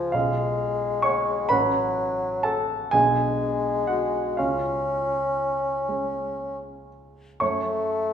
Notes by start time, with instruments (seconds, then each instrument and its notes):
Already playing: grand piano C#2 C#4 F4 G#4 F5 G#5, bassoon F3
0.12 grand piano B1 C#4 F4 F5, bassoon G#3
1.02 grand piano C#5 C#6
1.49 grand piano A1 C#4 B4 B5, bassoon F#3
2.43 grand piano A4 A5
2.91 grand piano B1 B3 D4 G#4 G#5, bassoon G#3
3.87 grand piano F#4 F#5
4.37 grand piano C#2 F4 F5, bassoon C#4
5.89 grand piano G#3 C#4
7.40 grand piano F#2 A3 C#4 C#5 C#6, bassoon A3